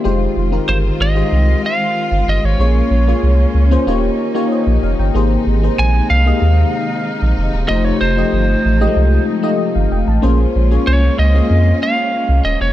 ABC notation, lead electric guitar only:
X:1
M:4/4
L:1/16
Q:1/4=94
K:Fm
V:1 name="Lead electric guitar"
z4 c2 e4 f4 e d- | d6- d z8 z | z4 a2 f8- f2 | e d c8 z6 |
z4 d2 e4 f4 e d |]